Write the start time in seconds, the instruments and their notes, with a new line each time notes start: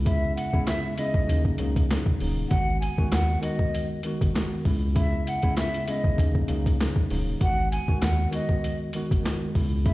Already playing: sub bass C#2
0.05 tine electric piano C#3 G#3 B3 E4, flute E5, kick, closed hi-hat
0.36 flute F#5, closed hi-hat
0.53 tine electric piano C#3 G#3 B3 E4, kick
0.67 flute E5, snare, clap, closed hi-hat
0.98 tine electric piano C#3 G#3 B3 E4, flute D#5, closed hi-hat
1.14 sub bass B1, kick
1.27 sub bass D#2, tine electric piano C#3 F#3 A#3 D#4, closed hi-hat
1.45 kick
1.58 sub bass C#2, tine electric piano C#3 F#3 A#3 D#4, closed hi-hat
1.76 kick, closed hi-hat
1.90 tine electric piano C#3 F#3 A#3 D#4, snare, clap, closed hi-hat
2.06 kick
2.20 sub bass D#1, tine electric piano C#3 F#3 A#3 D#4, open hi-hat
2.49 sub bass G#1, tine electric piano D#3 G#3 B3 F#4, flute F#5, kick, closed hi-hat
2.80 flute G#5, closed hi-hat
2.98 tine electric piano D#3 G#3 B3 F#4, kick
3.12 sub bass D#2, flute F#5, snare, clap, closed hi-hat
3.42 tine electric piano D#3 G#3 B3 F#4, flute D#5, closed hi-hat
3.59 kick
3.74 closed hi-hat
4.03 tine electric piano D#3 G#3 B3 F#4, closed hi-hat
4.21 sub bass G#1, kick, closed hi-hat
4.33 tine electric piano D#3 G#3 B3 F#4, snare, clap, closed hi-hat
4.65 sub bass C#2, tine electric piano C#3 G#3 B3 E4, kick, open hi-hat
4.95 tine electric piano C#3 G#3 B3 E4, flute E5, kick, closed hi-hat
5.27 flute F#5, closed hi-hat
5.42 tine electric piano C#3 G#3 B3 E4, kick, closed hi-hat
5.57 flute E5, snare, clap, closed hi-hat
5.74 closed hi-hat
5.88 tine electric piano C#3 G#3 B3 E4, flute D#5, closed hi-hat
6.04 sub bass B1, kick
6.17 sub bass D#2, tine electric piano C#3 F#3 A#3 D#4, kick, closed hi-hat
6.35 kick
6.48 sub bass C#2, tine electric piano C#3 F#3 A#3 D#4, closed hi-hat
6.66 kick, closed hi-hat
6.80 tine electric piano C#3 F#3 A#3 D#4, snare, clap, closed hi-hat
6.96 kick
7.10 sub bass D#1, tine electric piano C#3 F#3 A#3 D#4, snare, open hi-hat
7.40 sub bass G#1, tine electric piano D#3 G#3 B3 F#4, flute F#5, kick, closed hi-hat
7.71 flute G#5, closed hi-hat
7.88 tine electric piano D#3 G#3 B3 F#4, kick
8.02 sub bass D#2, flute F#5, snare, clap, closed hi-hat
8.31 tine electric piano D#3 G#3 B3 F#4, flute D#5, closed hi-hat
8.49 kick
8.64 closed hi-hat
8.93 tine electric piano D#3 G#3 B3 F#4, closed hi-hat
9.11 sub bass G#1, kick, closed hi-hat
9.23 tine electric piano D#3 G#3 B3 F#4, snare, clap, closed hi-hat
9.55 sub bass C#2, tine electric piano C#3 G#3 B3 E4, kick, open hi-hat
9.84 tine electric piano C#3 G#3 B3 E4, flute E5, kick, closed hi-hat